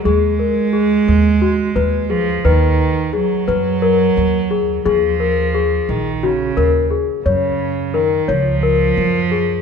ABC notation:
X:1
M:7/8
L:1/8
Q:1/4=87
K:Abdor
V:1 name="Celesta"
A B A2 G c A | c2 A c B2 A | A B A2 G B A | d2 B d B2 A |]
V:2 name="Cello" clef=bass
A,6 F, | E,2 G,4- G, | F,3 E, D,2 z | D,2 E, F,4 |]
V:3 name="Upright bass" clef=bass
E,,3 E,,2 E,,2 | E,,3 G,,2 E,,2 | E,,3 B,,,2 E,,2 | G,,3 D,,2 G,,2 |]